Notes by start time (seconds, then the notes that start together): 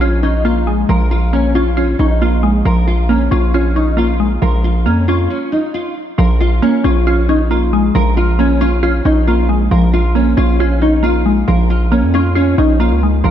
Already playing: A#1 F3 A#3 C#4
0.01 C#4 F4
0.23 C#4 D#4
0.45 A#3 F4
0.67 G#3
0.89 A#1 F3 A#4
1.11 F4
1.33 A#3 C#4
1.55 C#4 F4
1.77 C#4 F4
1.99 A#1 C#4 D#4
2.21 A#3 F4
2.43 G#3
2.65 A#1 F3 A#4
2.87 F4
3.09 A#3 C#4
3.31 A#1 C#4 F4
3.54 C#4 F4
3.76 C#4 D#4
3.97 A#3 F4
4.20 G#3
4.42 A#1 F3 A#4
4.64 F4
4.86 F2 A#3 C#4
5.08 C#4 F4
5.30 C#4
5.52 D#4
5.74 F4
6.18 A#1 F3 A#4
6.40 F4
6.62 A#3 C#4
6.84 A#1 C#4 F4
7.07 C#4 F4
7.29 C#4 D#4
7.51 A#3 F4
7.73 G#3
7.95 A#1 F3 A#4
8.17 F4
8.39 A#3 C#4
8.61 C#4 F4
8.83 C#4 F4
9.05 A#1 C#4 D#4
9.27 A#3 F4
9.49 G#3
9.71 A#1 F3 A#4
9.93 F4
10.15 A#3 C#4
10.37 A#1 C#4 F4
10.60 C#4 F4
10.82 C#4 D#4
11.03 A#3 F4
11.26 G#3
11.48 A#1 F3 A#4
11.70 F4
11.92 A#3 C#4
12.03 F2
12.14 C#4 F4
12.35 C#4 F4
12.58 A#1 C#4 D#4
12.80 A#3 F4
12.91 C#2
13.03 G#3
13.24 A#1 F3 A#4